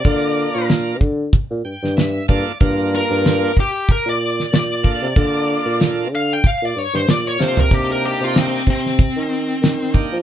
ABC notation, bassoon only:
X:1
M:4/4
L:1/16
Q:"Swing 16ths" 1/4=94
K:Gm
V:1 name="Bassoon" clef=bass
D,3 B,,3 D,2 z B,, G,, G,,3 G,, z | G,,3 G,,3 z3 B,,3 B,,3 C, | D,3 B,,3 D,2 z B,, G,, G,, B,,2 C,2 | C,3 C,3 C,3 E,3 E,3 F, |]